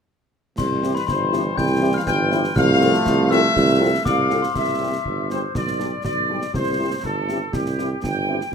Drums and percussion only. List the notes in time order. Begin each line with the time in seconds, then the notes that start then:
0.58 concert bass drum, snare, crash
0.83 snare
0.96 snare
1.08 concert bass drum, snare
1.33 snare
1.58 concert bass drum, snare
2.07 concert bass drum, snare
2.32 snare
2.44 snare
2.56 concert bass drum, snare
2.81 snare
2.94 snare
3.06 concert bass drum, snare
3.31 snare
3.56 concert bass drum, snare
4.06 concert bass drum, snare
4.31 snare
4.43 snare
4.55 concert bass drum, snare, crash
5.05 concert bass drum
5.30 snare
5.55 concert bass drum, snare
5.67 snare
5.80 snare
6.05 concert bass drum, snare
6.42 snare
6.54 concert bass drum, snare
7.04 concert bass drum
7.29 snare
7.53 concert bass drum, snare
7.66 snare
7.79 snare
8.04 concert bass drum, snare
8.41 snare